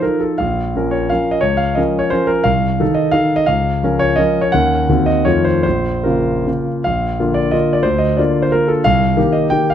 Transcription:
0.02 F3 D#4 A4 A#4
0.20 A4
0.38 A#1 F5
0.76 F3 C#4 A#4
0.91 C#5
1.09 F3 C#4 A#4 F5
1.31 D#5
1.41 C#2 C#5
1.57 F5
1.75 F3 C#4 A#4 D#5
1.99 C#5
2.10 F3 C#4 A#4 C5
2.27 A#4
2.44 C2 F5
2.80 D#3 D#4 A4
2.94 D#5
3.11 D#3 D#4 A4 F5
3.36 D#5
3.46 C#2 F5
3.83 F3 C#4 A#4
3.99 C#5
4.16 F3 C#4 A#4 D#5
4.41 C#5
4.52 D#2 D#3 C#4 A#4 F#5
4.89 D#2 D#3 C4 F#4
5.06 D#5
5.25 F2 D#3 A3 F4 C#5
5.45 C5
5.63 A#1 C5
6.04 C#3 A#3 F4 A#4
6.47 C#3 A#3 F4
6.84 A#1 F5
7.20 D3 A#3 F4
7.34 D5
7.51 D3 A#3 F4 D#5
7.73 D5
7.83 D2 C5
7.98 D#5
8.17 D3 A#3 F4 D5
8.42 C5
8.52 D3 A#3 F4 A#4
8.68 A4
8.84 C2 F5
9.17 D#3 A#3 G4
9.33 D#5
9.50 D#3 A#3 G4 G5
9.70 F5

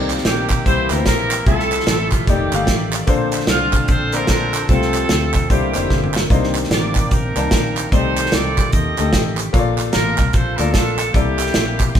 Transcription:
Already playing: C2 C3 D#3 A#3 C4 D#4 A#4 D5
0.10 clap, closed hi-hat
0.18 snare
0.25 A#1 A#3 D#4 G4, snare, closed hi-hat
0.50 kick, clap, closed hi-hat
0.65 C2 C3 E3 A#3 C4 E4 G4 C5, kick, closed hi-hat
0.90 D2 A#3 E4 G4 A#4 B4, clap, closed hi-hat
0.97 C5
1.06 A#1 E4 G4 A#4, kick, snare, closed hi-hat
1.31 clap, closed hi-hat
1.46 C2 C3 F3 A3 E4 F4 G4 A4 E5, kick, closed hi-hat
1.60 snare
1.72 clap, closed hi-hat
1.80 snare
1.87 A1, snare, closed hi-hat
2.12 F4, kick, clap, closed hi-hat
2.26 F1 D#3 A3 C4 D#4 G4 D5, kick, closed hi-hat
2.30 D5
2.52 G1 A3 D#4 G4 F5, clap, closed hi-hat
2.67 A1, kick, snare, closed hi-hat
2.93 clap, closed hi-hat
3.07 A#1 A#2 D3 A#3 C4 D4 A4 C5, kick, closed hi-hat
3.32 clap, closed hi-hat
3.40 snare
3.47 C2 A3 D4 F4, snare, closed hi-hat
3.73 kick, clap, closed hi-hat
3.88 A#1 F4 A4 C5, kick, closed hi-hat
4.12 A#3 D4 A4 A#4 C5, clap, closed hi-hat
4.27 A#1 D4 F4 A#4, kick, snare, closed hi-hat
4.54 clap, closed hi-hat
4.69 C2 C3 F3 A3 C4 F4 A4 C5, kick, closed hi-hat
4.82 snare
4.94 clap, closed hi-hat
5.09 D2, snare, closed hi-hat
5.34 A4, kick, clap, closed hi-hat
5.50 C2 C3 D3 A#3 D4 E4 G4 C5, kick, closed hi-hat
5.73 F1 A#3 D4 D#4 C5, clap, closed hi-hat
5.79 E4
5.90 G1, kick, snare
6.04 mid tom
6.14 snare, clap
6.29 C2 C3 D#3 A#3 D4 D#4 C5, kick, closed hi-hat
6.44 snare
6.55 clap, closed hi-hat
6.64 snare
6.70 A1 G4 A#4 D5, snare, closed hi-hat
6.95 kick, clap, closed hi-hat
7.11 A#1 D4 D#4 A#4, kick, closed hi-hat
7.36 C2 D#3 A#3 D5 A5, clap, closed hi-hat
7.51 A#1, kick, snare, closed hi-hat
7.77 clap, closed hi-hat
7.92 C2 C3 A3 D#4 G4 A4 C5 D5, kick, closed hi-hat
8.17 clap, closed hi-hat
8.26 snare
8.32 C2 F4 A4 D5, snare, closed hi-hat
8.58 kick, clap, closed hi-hat
8.72 D#2 G4 A4 D#5, kick, closed hi-hat
8.97 D2 A3 D#4 G4 A4, clap, closed hi-hat
9.13 A1, kick, snare, closed hi-hat
9.37 clap, closed hi-hat
9.53 A#1 A#2 A#3 F4 A4 C#5, kick, closed hi-hat
9.59 D5
9.78 clap, closed hi-hat
9.93 A1 D4 F4 A#4, snare, closed hi-hat
10.18 C2, kick, clap, closed hi-hat
10.33 A#1 F4 A4 C5, kick, closed hi-hat
10.57 D2 A#3 F4 A4 A#4 D5, clap, closed hi-hat
10.72 A#1 D4 F4 A4, kick, snare, closed hi-hat
10.99 clap, closed hi-hat
11.12 C2 C3 A#3 E4 G4 A4 D5, kick, closed hi-hat
11.39 clap, closed hi-hat
11.47 snare
11.54 A#1, snare, closed hi-hat
11.80 kick, clap, closed hi-hat
11.95 D2, kick, snare

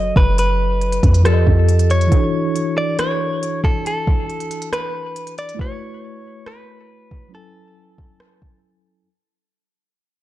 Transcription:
Already playing: F#1 F#3 F#4 A4 C#5 D#5
0.16 F#1 B4, kick
0.38 B4, closed hi-hat
0.81 closed hi-hat
0.92 closed hi-hat
1.03 F2, kick, closed hi-hat
1.14 closed hi-hat
1.23 F3 F4 G4 A4, cross-stick, closed hi-hat
1.27 D5
1.34 D#5
1.47 F2, kick
1.69 closed hi-hat
1.79 closed hi-hat
1.90 C#5, closed hi-hat
2.01 closed hi-hat
2.07 E3 E4
2.12 F#4 A4, kick, closed hi-hat
2.16 D4
2.56 closed hi-hat
2.78 D5
2.99 C#5, cross-stick, closed hi-hat
3.43 closed hi-hat
3.64 A4, kick
3.86 A4, closed hi-hat
4.07 kick
4.30 closed hi-hat
4.40 closed hi-hat
4.51 closed hi-hat
4.62 closed hi-hat
4.73 B4, cross-stick, closed hi-hat
5.16 closed hi-hat
5.27 closed hi-hat
5.38 D5, closed hi-hat
5.49 closed hi-hat
5.55 A3 E4
5.59 F#4 B4 C#5, kick
5.63 C#5
6.46 B4, cross-stick
7.11 kick
7.28 F#3 C#4
7.33 E4 A4 G#5
7.37 A4
7.98 kick
8.20 cross-stick
8.42 kick

